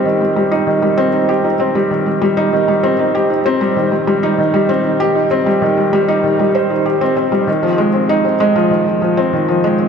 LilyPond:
\new Staff \with { instrumentName = "Felt piano" } { \clef bass \time 4/4 \key c \phrygian \tempo 4 = 97 ees16 g16 g16 ees'16 ees16 g16 c'16 ees'16 g'16 ees'16 c'16 g16 ees16 g16 g16 ees'16 | ees16 g16 c'16 ees'16 g'16 ees'16 c'16 g16 ees16 g16 g16 ees'16 ees16 g16 c'16 ees'16 | g'16 ees'16 c'16 g16 ees16 g16 g16 ees'16 ees16 g16 c''16 ees'16 g'16 c'16 c'16 g16 | ees16 f16 aes16 c'16 ees'16 c'16 aes16 f16 ees16 f16 f16 c'16 ees16 f16 aes16 c'16 | }